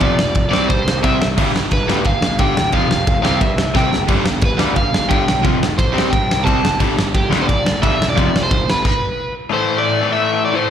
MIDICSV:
0, 0, Header, 1, 5, 480
1, 0, Start_track
1, 0, Tempo, 339559
1, 16, Time_signature, 4, 2, 24, 8
1, 15126, End_track
2, 0, Start_track
2, 0, Title_t, "Overdriven electric guitar"
2, 0, Program_c, 0, 29
2, 0, Note_on_c, 0, 74, 104
2, 680, Note_off_c, 0, 74, 0
2, 697, Note_on_c, 0, 74, 81
2, 965, Note_on_c, 0, 72, 90
2, 966, Note_off_c, 0, 74, 0
2, 1419, Note_off_c, 0, 72, 0
2, 1456, Note_on_c, 0, 76, 80
2, 1794, Note_off_c, 0, 76, 0
2, 2447, Note_on_c, 0, 71, 86
2, 2904, Note_on_c, 0, 77, 88
2, 2930, Note_off_c, 0, 71, 0
2, 3385, Note_off_c, 0, 77, 0
2, 3391, Note_on_c, 0, 79, 109
2, 3873, Note_off_c, 0, 79, 0
2, 3879, Note_on_c, 0, 77, 100
2, 4543, Note_off_c, 0, 77, 0
2, 4560, Note_on_c, 0, 77, 88
2, 4813, Note_off_c, 0, 77, 0
2, 4813, Note_on_c, 0, 76, 82
2, 5313, Note_off_c, 0, 76, 0
2, 5319, Note_on_c, 0, 79, 88
2, 5647, Note_off_c, 0, 79, 0
2, 6297, Note_on_c, 0, 71, 73
2, 6728, Note_off_c, 0, 71, 0
2, 6732, Note_on_c, 0, 77, 95
2, 7193, Note_off_c, 0, 77, 0
2, 7198, Note_on_c, 0, 79, 97
2, 7657, Note_off_c, 0, 79, 0
2, 8170, Note_on_c, 0, 72, 78
2, 8623, Note_off_c, 0, 72, 0
2, 8628, Note_on_c, 0, 79, 93
2, 9103, Note_off_c, 0, 79, 0
2, 9109, Note_on_c, 0, 81, 100
2, 9572, Note_off_c, 0, 81, 0
2, 10111, Note_on_c, 0, 67, 78
2, 10478, Note_on_c, 0, 72, 73
2, 10501, Note_off_c, 0, 67, 0
2, 10568, Note_off_c, 0, 72, 0
2, 10574, Note_on_c, 0, 74, 87
2, 11054, Note_off_c, 0, 74, 0
2, 11060, Note_on_c, 0, 76, 120
2, 11397, Note_off_c, 0, 76, 0
2, 11443, Note_on_c, 0, 74, 105
2, 11913, Note_off_c, 0, 74, 0
2, 11918, Note_on_c, 0, 72, 89
2, 12282, Note_off_c, 0, 72, 0
2, 12306, Note_on_c, 0, 71, 91
2, 12510, Note_off_c, 0, 71, 0
2, 12548, Note_on_c, 0, 71, 77
2, 13197, Note_off_c, 0, 71, 0
2, 13479, Note_on_c, 0, 72, 100
2, 13806, Note_off_c, 0, 72, 0
2, 13834, Note_on_c, 0, 74, 109
2, 14274, Note_off_c, 0, 74, 0
2, 14316, Note_on_c, 0, 76, 106
2, 14755, Note_off_c, 0, 76, 0
2, 14776, Note_on_c, 0, 74, 84
2, 14916, Note_off_c, 0, 74, 0
2, 14916, Note_on_c, 0, 72, 100
2, 15126, Note_off_c, 0, 72, 0
2, 15126, End_track
3, 0, Start_track
3, 0, Title_t, "Overdriven electric guitar"
3, 0, Program_c, 1, 29
3, 6, Note_on_c, 1, 41, 87
3, 16, Note_on_c, 1, 53, 92
3, 18, Note_on_c, 1, 48, 97
3, 203, Note_off_c, 1, 41, 0
3, 208, Note_off_c, 1, 53, 0
3, 209, Note_off_c, 1, 48, 0
3, 720, Note_on_c, 1, 48, 101
3, 726, Note_on_c, 1, 55, 91
3, 734, Note_on_c, 1, 60, 105
3, 921, Note_off_c, 1, 48, 0
3, 924, Note_off_c, 1, 55, 0
3, 928, Note_off_c, 1, 60, 0
3, 1457, Note_on_c, 1, 48, 88
3, 1458, Note_on_c, 1, 60, 102
3, 1461, Note_on_c, 1, 55, 95
3, 1651, Note_off_c, 1, 48, 0
3, 1651, Note_off_c, 1, 60, 0
3, 1653, Note_off_c, 1, 55, 0
3, 1944, Note_on_c, 1, 43, 89
3, 1947, Note_on_c, 1, 50, 89
3, 1956, Note_on_c, 1, 55, 91
3, 2135, Note_off_c, 1, 43, 0
3, 2136, Note_off_c, 1, 50, 0
3, 2141, Note_off_c, 1, 55, 0
3, 2663, Note_on_c, 1, 43, 95
3, 2670, Note_on_c, 1, 50, 98
3, 2678, Note_on_c, 1, 55, 99
3, 2855, Note_off_c, 1, 43, 0
3, 2858, Note_off_c, 1, 50, 0
3, 2863, Note_off_c, 1, 55, 0
3, 3378, Note_on_c, 1, 43, 86
3, 3389, Note_on_c, 1, 50, 93
3, 3400, Note_on_c, 1, 55, 119
3, 3573, Note_off_c, 1, 43, 0
3, 3579, Note_off_c, 1, 50, 0
3, 3584, Note_off_c, 1, 55, 0
3, 3856, Note_on_c, 1, 41, 82
3, 3862, Note_on_c, 1, 53, 97
3, 3863, Note_on_c, 1, 48, 87
3, 4052, Note_off_c, 1, 41, 0
3, 4055, Note_off_c, 1, 53, 0
3, 4056, Note_off_c, 1, 48, 0
3, 4561, Note_on_c, 1, 48, 96
3, 4575, Note_on_c, 1, 60, 102
3, 4576, Note_on_c, 1, 55, 90
3, 4765, Note_off_c, 1, 48, 0
3, 4772, Note_off_c, 1, 55, 0
3, 4772, Note_off_c, 1, 60, 0
3, 5289, Note_on_c, 1, 48, 91
3, 5299, Note_on_c, 1, 55, 97
3, 5301, Note_on_c, 1, 60, 91
3, 5489, Note_off_c, 1, 48, 0
3, 5494, Note_off_c, 1, 55, 0
3, 5495, Note_off_c, 1, 60, 0
3, 5763, Note_on_c, 1, 43, 86
3, 5778, Note_on_c, 1, 50, 90
3, 5779, Note_on_c, 1, 55, 96
3, 5966, Note_off_c, 1, 43, 0
3, 5973, Note_off_c, 1, 50, 0
3, 5974, Note_off_c, 1, 55, 0
3, 6488, Note_on_c, 1, 43, 98
3, 6488, Note_on_c, 1, 50, 102
3, 6498, Note_on_c, 1, 55, 111
3, 6688, Note_off_c, 1, 43, 0
3, 6688, Note_off_c, 1, 50, 0
3, 6693, Note_off_c, 1, 55, 0
3, 7199, Note_on_c, 1, 43, 95
3, 7207, Note_on_c, 1, 50, 97
3, 7218, Note_on_c, 1, 55, 100
3, 7404, Note_off_c, 1, 43, 0
3, 7408, Note_off_c, 1, 50, 0
3, 7413, Note_off_c, 1, 55, 0
3, 7678, Note_on_c, 1, 41, 86
3, 7689, Note_on_c, 1, 48, 79
3, 7696, Note_on_c, 1, 53, 102
3, 7883, Note_off_c, 1, 41, 0
3, 7889, Note_off_c, 1, 48, 0
3, 7892, Note_off_c, 1, 53, 0
3, 8399, Note_on_c, 1, 48, 102
3, 8403, Note_on_c, 1, 55, 96
3, 8403, Note_on_c, 1, 60, 115
3, 8604, Note_off_c, 1, 48, 0
3, 8606, Note_off_c, 1, 55, 0
3, 8606, Note_off_c, 1, 60, 0
3, 9134, Note_on_c, 1, 48, 93
3, 9143, Note_on_c, 1, 55, 104
3, 9146, Note_on_c, 1, 60, 107
3, 9331, Note_off_c, 1, 48, 0
3, 9336, Note_off_c, 1, 55, 0
3, 9338, Note_off_c, 1, 60, 0
3, 9612, Note_on_c, 1, 43, 85
3, 9617, Note_on_c, 1, 50, 87
3, 9631, Note_on_c, 1, 55, 101
3, 9811, Note_off_c, 1, 43, 0
3, 9813, Note_off_c, 1, 50, 0
3, 9820, Note_off_c, 1, 55, 0
3, 10318, Note_on_c, 1, 43, 93
3, 10327, Note_on_c, 1, 50, 112
3, 10332, Note_on_c, 1, 55, 107
3, 10524, Note_off_c, 1, 43, 0
3, 10528, Note_off_c, 1, 50, 0
3, 10531, Note_off_c, 1, 55, 0
3, 11055, Note_on_c, 1, 43, 95
3, 11058, Note_on_c, 1, 50, 91
3, 11065, Note_on_c, 1, 55, 97
3, 11252, Note_off_c, 1, 43, 0
3, 11254, Note_off_c, 1, 50, 0
3, 11257, Note_off_c, 1, 55, 0
3, 11538, Note_on_c, 1, 41, 92
3, 11543, Note_on_c, 1, 48, 88
3, 11554, Note_on_c, 1, 53, 86
3, 11734, Note_off_c, 1, 41, 0
3, 11737, Note_off_c, 1, 48, 0
3, 11742, Note_off_c, 1, 53, 0
3, 13427, Note_on_c, 1, 45, 93
3, 13447, Note_on_c, 1, 52, 97
3, 13470, Note_on_c, 1, 57, 104
3, 14133, Note_off_c, 1, 57, 0
3, 14149, Note_off_c, 1, 45, 0
3, 14150, Note_on_c, 1, 57, 94
3, 14163, Note_off_c, 1, 52, 0
3, 14169, Note_on_c, 1, 52, 88
3, 14181, Note_on_c, 1, 45, 76
3, 14866, Note_off_c, 1, 45, 0
3, 14869, Note_off_c, 1, 57, 0
3, 14879, Note_off_c, 1, 52, 0
3, 14883, Note_on_c, 1, 45, 85
3, 14900, Note_on_c, 1, 52, 82
3, 14920, Note_on_c, 1, 57, 89
3, 15126, Note_off_c, 1, 45, 0
3, 15126, Note_off_c, 1, 52, 0
3, 15126, Note_off_c, 1, 57, 0
3, 15126, End_track
4, 0, Start_track
4, 0, Title_t, "Picked electric bass"
4, 0, Program_c, 2, 34
4, 19, Note_on_c, 2, 29, 101
4, 247, Note_off_c, 2, 29, 0
4, 268, Note_on_c, 2, 29, 84
4, 492, Note_off_c, 2, 29, 0
4, 508, Note_on_c, 2, 29, 83
4, 732, Note_off_c, 2, 29, 0
4, 742, Note_on_c, 2, 36, 80
4, 969, Note_off_c, 2, 36, 0
4, 991, Note_on_c, 2, 43, 92
4, 1199, Note_off_c, 2, 43, 0
4, 1207, Note_on_c, 2, 36, 83
4, 1442, Note_off_c, 2, 36, 0
4, 1463, Note_on_c, 2, 36, 88
4, 1691, Note_off_c, 2, 36, 0
4, 1706, Note_on_c, 2, 36, 82
4, 1932, Note_off_c, 2, 36, 0
4, 1942, Note_on_c, 2, 31, 85
4, 2171, Note_off_c, 2, 31, 0
4, 2185, Note_on_c, 2, 31, 84
4, 2412, Note_off_c, 2, 31, 0
4, 2432, Note_on_c, 2, 31, 88
4, 2640, Note_off_c, 2, 31, 0
4, 2648, Note_on_c, 2, 38, 83
4, 2884, Note_off_c, 2, 38, 0
4, 2905, Note_on_c, 2, 31, 100
4, 3122, Note_off_c, 2, 31, 0
4, 3131, Note_on_c, 2, 31, 91
4, 3366, Note_off_c, 2, 31, 0
4, 3382, Note_on_c, 2, 31, 91
4, 3611, Note_off_c, 2, 31, 0
4, 3618, Note_on_c, 2, 28, 83
4, 3849, Note_off_c, 2, 28, 0
4, 3861, Note_on_c, 2, 29, 96
4, 4084, Note_off_c, 2, 29, 0
4, 4092, Note_on_c, 2, 29, 91
4, 4327, Note_off_c, 2, 29, 0
4, 4343, Note_on_c, 2, 29, 88
4, 4565, Note_off_c, 2, 29, 0
4, 4565, Note_on_c, 2, 36, 86
4, 4803, Note_off_c, 2, 36, 0
4, 4819, Note_on_c, 2, 43, 91
4, 5033, Note_off_c, 2, 43, 0
4, 5041, Note_on_c, 2, 36, 82
4, 5281, Note_off_c, 2, 36, 0
4, 5302, Note_on_c, 2, 36, 90
4, 5509, Note_off_c, 2, 36, 0
4, 5518, Note_on_c, 2, 30, 83
4, 5759, Note_off_c, 2, 30, 0
4, 5779, Note_on_c, 2, 31, 83
4, 5998, Note_off_c, 2, 31, 0
4, 6007, Note_on_c, 2, 31, 81
4, 6239, Note_off_c, 2, 31, 0
4, 6248, Note_on_c, 2, 31, 84
4, 6484, Note_off_c, 2, 31, 0
4, 6494, Note_on_c, 2, 38, 86
4, 6728, Note_off_c, 2, 38, 0
4, 6739, Note_on_c, 2, 31, 95
4, 6955, Note_off_c, 2, 31, 0
4, 6964, Note_on_c, 2, 31, 87
4, 7202, Note_off_c, 2, 31, 0
4, 7221, Note_on_c, 2, 31, 92
4, 7452, Note_off_c, 2, 31, 0
4, 7474, Note_on_c, 2, 35, 83
4, 7694, Note_on_c, 2, 29, 86
4, 7715, Note_off_c, 2, 35, 0
4, 7928, Note_off_c, 2, 29, 0
4, 7947, Note_on_c, 2, 29, 86
4, 8167, Note_off_c, 2, 29, 0
4, 8176, Note_on_c, 2, 35, 91
4, 8394, Note_off_c, 2, 35, 0
4, 8403, Note_on_c, 2, 36, 87
4, 8642, Note_off_c, 2, 36, 0
4, 8665, Note_on_c, 2, 43, 90
4, 8894, Note_off_c, 2, 43, 0
4, 8900, Note_on_c, 2, 36, 86
4, 9131, Note_off_c, 2, 36, 0
4, 9140, Note_on_c, 2, 36, 89
4, 9363, Note_off_c, 2, 36, 0
4, 9371, Note_on_c, 2, 30, 86
4, 9607, Note_off_c, 2, 30, 0
4, 9624, Note_on_c, 2, 31, 94
4, 9853, Note_off_c, 2, 31, 0
4, 9876, Note_on_c, 2, 31, 88
4, 10095, Note_off_c, 2, 31, 0
4, 10104, Note_on_c, 2, 31, 95
4, 10333, Note_off_c, 2, 31, 0
4, 10340, Note_on_c, 2, 38, 89
4, 10571, Note_off_c, 2, 38, 0
4, 10587, Note_on_c, 2, 31, 100
4, 10804, Note_off_c, 2, 31, 0
4, 10813, Note_on_c, 2, 31, 94
4, 11048, Note_off_c, 2, 31, 0
4, 11077, Note_on_c, 2, 31, 98
4, 11286, Note_off_c, 2, 31, 0
4, 11295, Note_on_c, 2, 28, 89
4, 11529, Note_off_c, 2, 28, 0
4, 11550, Note_on_c, 2, 29, 92
4, 11764, Note_off_c, 2, 29, 0
4, 11773, Note_on_c, 2, 29, 90
4, 12008, Note_off_c, 2, 29, 0
4, 12032, Note_on_c, 2, 29, 92
4, 12248, Note_off_c, 2, 29, 0
4, 12256, Note_on_c, 2, 31, 88
4, 12489, Note_off_c, 2, 31, 0
4, 15126, End_track
5, 0, Start_track
5, 0, Title_t, "Drums"
5, 6, Note_on_c, 9, 51, 69
5, 19, Note_on_c, 9, 36, 101
5, 147, Note_off_c, 9, 51, 0
5, 160, Note_off_c, 9, 36, 0
5, 265, Note_on_c, 9, 38, 110
5, 407, Note_off_c, 9, 38, 0
5, 491, Note_on_c, 9, 51, 76
5, 503, Note_on_c, 9, 36, 110
5, 632, Note_off_c, 9, 51, 0
5, 644, Note_off_c, 9, 36, 0
5, 755, Note_on_c, 9, 38, 107
5, 897, Note_off_c, 9, 38, 0
5, 987, Note_on_c, 9, 51, 71
5, 988, Note_on_c, 9, 36, 113
5, 1128, Note_off_c, 9, 51, 0
5, 1130, Note_off_c, 9, 36, 0
5, 1241, Note_on_c, 9, 38, 124
5, 1382, Note_off_c, 9, 38, 0
5, 1466, Note_on_c, 9, 51, 84
5, 1469, Note_on_c, 9, 36, 114
5, 1608, Note_off_c, 9, 51, 0
5, 1610, Note_off_c, 9, 36, 0
5, 1719, Note_on_c, 9, 38, 104
5, 1860, Note_off_c, 9, 38, 0
5, 1945, Note_on_c, 9, 49, 92
5, 1948, Note_on_c, 9, 36, 101
5, 2086, Note_off_c, 9, 49, 0
5, 2089, Note_off_c, 9, 36, 0
5, 2202, Note_on_c, 9, 38, 94
5, 2344, Note_off_c, 9, 38, 0
5, 2418, Note_on_c, 9, 51, 78
5, 2428, Note_on_c, 9, 36, 104
5, 2560, Note_off_c, 9, 51, 0
5, 2569, Note_off_c, 9, 36, 0
5, 2679, Note_on_c, 9, 38, 106
5, 2821, Note_off_c, 9, 38, 0
5, 2890, Note_on_c, 9, 51, 74
5, 2905, Note_on_c, 9, 36, 111
5, 3031, Note_off_c, 9, 51, 0
5, 3046, Note_off_c, 9, 36, 0
5, 3144, Note_on_c, 9, 38, 113
5, 3285, Note_off_c, 9, 38, 0
5, 3372, Note_on_c, 9, 51, 77
5, 3382, Note_on_c, 9, 36, 118
5, 3514, Note_off_c, 9, 51, 0
5, 3523, Note_off_c, 9, 36, 0
5, 3635, Note_on_c, 9, 38, 112
5, 3777, Note_off_c, 9, 38, 0
5, 3850, Note_on_c, 9, 51, 66
5, 3861, Note_on_c, 9, 36, 93
5, 3991, Note_off_c, 9, 51, 0
5, 4002, Note_off_c, 9, 36, 0
5, 4112, Note_on_c, 9, 38, 102
5, 4253, Note_off_c, 9, 38, 0
5, 4340, Note_on_c, 9, 51, 76
5, 4344, Note_on_c, 9, 36, 120
5, 4482, Note_off_c, 9, 51, 0
5, 4485, Note_off_c, 9, 36, 0
5, 4591, Note_on_c, 9, 38, 103
5, 4732, Note_off_c, 9, 38, 0
5, 4820, Note_on_c, 9, 51, 84
5, 4822, Note_on_c, 9, 36, 108
5, 4962, Note_off_c, 9, 51, 0
5, 4963, Note_off_c, 9, 36, 0
5, 5063, Note_on_c, 9, 38, 120
5, 5205, Note_off_c, 9, 38, 0
5, 5298, Note_on_c, 9, 36, 111
5, 5309, Note_on_c, 9, 38, 68
5, 5439, Note_off_c, 9, 36, 0
5, 5451, Note_off_c, 9, 38, 0
5, 5552, Note_on_c, 9, 38, 85
5, 5693, Note_off_c, 9, 38, 0
5, 5772, Note_on_c, 9, 49, 78
5, 5777, Note_on_c, 9, 36, 107
5, 5914, Note_off_c, 9, 49, 0
5, 5919, Note_off_c, 9, 36, 0
5, 6016, Note_on_c, 9, 38, 113
5, 6157, Note_off_c, 9, 38, 0
5, 6240, Note_on_c, 9, 51, 78
5, 6252, Note_on_c, 9, 36, 119
5, 6381, Note_off_c, 9, 51, 0
5, 6393, Note_off_c, 9, 36, 0
5, 6491, Note_on_c, 9, 38, 110
5, 6633, Note_off_c, 9, 38, 0
5, 6727, Note_on_c, 9, 51, 69
5, 6734, Note_on_c, 9, 36, 106
5, 6868, Note_off_c, 9, 51, 0
5, 6875, Note_off_c, 9, 36, 0
5, 6989, Note_on_c, 9, 38, 114
5, 7130, Note_off_c, 9, 38, 0
5, 7220, Note_on_c, 9, 36, 121
5, 7221, Note_on_c, 9, 51, 75
5, 7361, Note_off_c, 9, 36, 0
5, 7363, Note_off_c, 9, 51, 0
5, 7468, Note_on_c, 9, 38, 113
5, 7610, Note_off_c, 9, 38, 0
5, 7699, Note_on_c, 9, 36, 100
5, 7700, Note_on_c, 9, 51, 64
5, 7840, Note_off_c, 9, 36, 0
5, 7842, Note_off_c, 9, 51, 0
5, 7958, Note_on_c, 9, 38, 110
5, 8099, Note_off_c, 9, 38, 0
5, 8181, Note_on_c, 9, 36, 115
5, 8188, Note_on_c, 9, 51, 75
5, 8323, Note_off_c, 9, 36, 0
5, 8330, Note_off_c, 9, 51, 0
5, 8456, Note_on_c, 9, 38, 99
5, 8597, Note_off_c, 9, 38, 0
5, 8662, Note_on_c, 9, 36, 105
5, 8665, Note_on_c, 9, 51, 75
5, 8803, Note_off_c, 9, 36, 0
5, 8806, Note_off_c, 9, 51, 0
5, 8925, Note_on_c, 9, 38, 113
5, 9067, Note_off_c, 9, 38, 0
5, 9143, Note_on_c, 9, 36, 115
5, 9151, Note_on_c, 9, 51, 84
5, 9285, Note_off_c, 9, 36, 0
5, 9292, Note_off_c, 9, 51, 0
5, 9397, Note_on_c, 9, 38, 113
5, 9538, Note_off_c, 9, 38, 0
5, 9613, Note_on_c, 9, 49, 81
5, 9618, Note_on_c, 9, 36, 102
5, 9754, Note_off_c, 9, 49, 0
5, 9759, Note_off_c, 9, 36, 0
5, 9875, Note_on_c, 9, 38, 102
5, 10016, Note_off_c, 9, 38, 0
5, 10099, Note_on_c, 9, 51, 77
5, 10101, Note_on_c, 9, 36, 110
5, 10241, Note_off_c, 9, 51, 0
5, 10242, Note_off_c, 9, 36, 0
5, 10355, Note_on_c, 9, 38, 102
5, 10497, Note_off_c, 9, 38, 0
5, 10588, Note_on_c, 9, 36, 112
5, 10589, Note_on_c, 9, 51, 78
5, 10729, Note_off_c, 9, 36, 0
5, 10730, Note_off_c, 9, 51, 0
5, 10835, Note_on_c, 9, 38, 122
5, 10976, Note_off_c, 9, 38, 0
5, 11071, Note_on_c, 9, 36, 113
5, 11075, Note_on_c, 9, 51, 76
5, 11213, Note_off_c, 9, 36, 0
5, 11216, Note_off_c, 9, 51, 0
5, 11336, Note_on_c, 9, 38, 109
5, 11477, Note_off_c, 9, 38, 0
5, 11557, Note_on_c, 9, 36, 103
5, 11570, Note_on_c, 9, 51, 65
5, 11698, Note_off_c, 9, 36, 0
5, 11711, Note_off_c, 9, 51, 0
5, 11814, Note_on_c, 9, 38, 107
5, 11956, Note_off_c, 9, 38, 0
5, 12030, Note_on_c, 9, 51, 70
5, 12031, Note_on_c, 9, 36, 114
5, 12171, Note_off_c, 9, 51, 0
5, 12172, Note_off_c, 9, 36, 0
5, 12291, Note_on_c, 9, 38, 112
5, 12433, Note_off_c, 9, 38, 0
5, 12508, Note_on_c, 9, 57, 101
5, 12510, Note_on_c, 9, 36, 114
5, 12649, Note_off_c, 9, 57, 0
5, 12652, Note_off_c, 9, 36, 0
5, 15126, End_track
0, 0, End_of_file